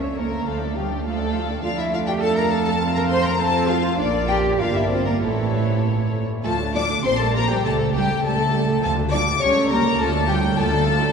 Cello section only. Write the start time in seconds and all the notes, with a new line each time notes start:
Already playing: C#4
0.18 A#3
0.47 A3
0.76 G3
1.04 A3
1.63 F4
1.79 E4
1.92 F4
2.07 G4
2.21 A4
2.37 A#4
2.51 A4
2.66 A4
2.97 A#4
3.10 C5
3.27 A#4
3.40 A4
3.69 F4
3.98 D4
4.29 G4
4.60 F4
4.76 E4
4.91 C4
5.07 A#3
5.22 A3
6.44 A3
6.75 D4
7.05 C4
7.21 A3
7.35 A#3
7.50 G3
7.65 A3
7.95 G3
8.24 A3
8.83 A3
9.13 D4
9.42 C#4
9.71 A#3
9.99 A3
10.28 G3
10.57 A3